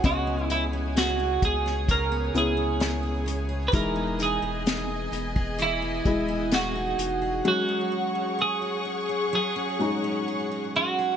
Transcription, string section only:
\new Staff \with { instrumentName = "String section" } { \time 4/4 \key cis \dorian \tempo 4 = 64 << { <cis'' gis''>1 | <dis'' gis''>1 | <cis'' fis'' cis'''>1 | } \\ { gis'1~ | gis'1 | gis'1 | } >> }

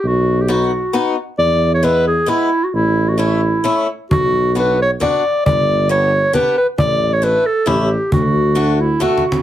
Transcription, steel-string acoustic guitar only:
\new Staff \with { instrumentName = "Steel-string acoustic guitar" } { \time 3/4 \key a \mixolydian \tempo 4 = 134 r4 <b dis' fis'>8 r8 <b dis' fis'>8 r8 | r4 <gis b e'>8 r8 <gis b e'>8 r8 | r4 <a cis' e'>8 r8 <a cis' e'>8 r8 | r4 <b d' fis'>8 r8 <b d' fis'>8 r8 |
r4 <b d' g'>8 r8 <b d' g'>8 r8 | r4 <a d' e'>8 r8 <a cis' e'>8 r8 | r4 <a d' fis'>8 r8 <a d' fis'>8 r8 | }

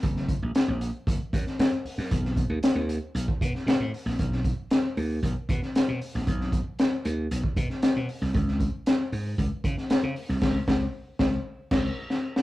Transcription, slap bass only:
\new Staff \with { instrumentName = "Slap bass" } { \clef bass \time 4/4 \key b \lydian \tempo 4 = 116 fis,,8. ais,,16 r16 ais,,8 r16 fis,,16 r16 fis,16 r16 fis,16 r8 fis,16 | b,,8. dis,16 r16 dis,8 r16 b,,16 r16 b,16 r16 b,16 a,16 r16 ais,,16 | b,,8. r8. dis,8 b,,16 r16 b,16 r8 b,16 r16 ais,,16 | b,,8. r8. dis,8 b,,16 r16 b,16 r8 b,16 r16 bis,,16 |
cis,8. r8. gis,8 cis,16 r16 cis16 r8 cis16 r16 bis,,16 | cis,8 cis,8 r8 cis,8 r8 cis,8 r4 | }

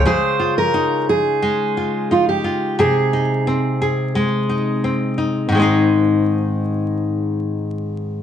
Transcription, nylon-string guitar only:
\new Staff \with { instrumentName = "Nylon-string guitar" } { \time 4/4 \key aes \major \tempo 4 = 88 <des aes'>8 f'8 ees'4 aes8 f'8 ees'8 f'8 | <c aes'>8 ees'8 c'8 aes'8 aes8 ees'8 c'8 ees'8 | <aes, ees aes c' ees' aes'>1 | }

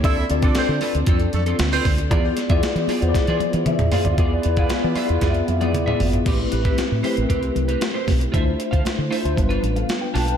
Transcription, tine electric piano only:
\new Staff \with { instrumentName = "Tine electric piano" } { \time 4/4 \key a \minor \tempo 4 = 116 << { r1 | r2 r8. f'16 <gis' e''>8 <gis' f''>16 <f' d''>16~ | <f' d''>16 r2. r8. | r1 |
r2 r8. <a' f''>8 <b' g''>16 a''16 <b' g''>16 | } \\ { <c' d' f' a' d''>16 r16 <c' d' f' a' d''>16 <c' d' f' a' d''>4. r4. r16 | <b e' f' gis' d''>8 r16 <b e' f' gis' d''>8. r16 <b e' f' gis' c'' d''>4. r8. | <b e' f' gis' d''>8 r16 <b e' f' gis' f''>16 r16 <b e' f' gis' d''>8 r16 <b e' f' gis' e''>8 r16 <b e' f' gis' d''>16 r16 <b e' f' gis' d''>8 r16 | <a c' e' g' b'>16 r16 <a c' e' g' b'>8. r16 <a c' e' g' bes' b'>4. r4 |
<a d' e' f' c''>4 r8 <a d' e' f' c''>16 <a d' e' f' c''>16 <g b d' f' b'>4. r8 | } >> }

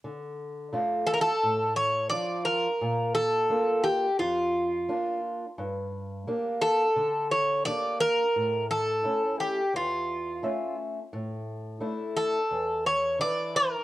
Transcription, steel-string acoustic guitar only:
\new Staff \with { instrumentName = "Steel-string acoustic guitar" } { \time 4/4 \key d \minor \tempo 4 = 87 d4 <a d' f'>4 a,4 <f d' f'>4 | bes,4 <bes d' f'>4 f,4 <bes d' f'>4 | g,4 <bes d' g'>4 d4 <bes d' g'>4 | a,4 <a cis' e'>4 e,4 <a cis' e''>4 |
a,4 <a d' e'>4 e,4 <e d' e'>4 | }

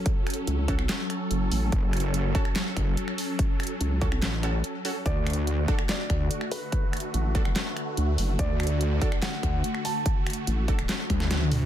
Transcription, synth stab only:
\new Staff \with { instrumentName = "Synth stab" } { \time 4/4 \key d \lydian \tempo 4 = 144 r4. <cis' fis' a'>8 r2 | r4. <cis' fis' a'>8 r2 | r4. <cis' fis' a'>8 r8 <cis' fis' a'>8 r8 <cis' fis' a'>8 | r4. <d' fis' a'>8 r2 |
r4. <d' fis' a'>8 r2 | r4. <d' fis' a'>8 r2 | r4. <d' fis' a'>8 r2 | }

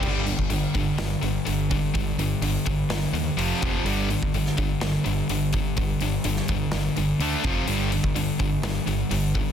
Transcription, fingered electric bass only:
\new Staff \with { instrumentName = "Fingered electric bass" } { \clef bass \time 4/4 \key f \dorian \tempo 4 = 126 g,,4 g,,8 g,,8 g,,8 g,,8 g,,4 | g,,8 g,,8 g,,8 g,,8 g,,8 ees,8 f,,8 f,,8 | g,,4 g,,8 g,,8 g,,8 g,,8 g,,4 | g,,8 g,,8 g,,8 g,,8 g,,8 g,,8 d,8 f,,8 |
g,,4 g,,8 g,,8 g,,8 g,,8 g,,4 | }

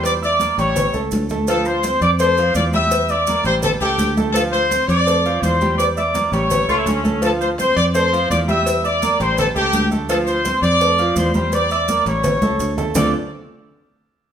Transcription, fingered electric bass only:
\new Staff \with { instrumentName = "Fingered electric bass" } { \clef bass \time 4/4 \key d \minor \tempo 4 = 167 e,4. a,,4 cis,8 d,4~ | d,4. f,4. e,4~ | e,4. a,,4 cis,8 d,4~ | d,4. f,4. e,4~ |
e,4. a,,4 cis,8 d,4~ | d,4. f,4. e,4~ | e,4. a,,4 cis,8 d,4~ | d,4. f,4. e,4~ |
e,4. a,,4 cis,8 d,4 | d,8 r2. r8 | }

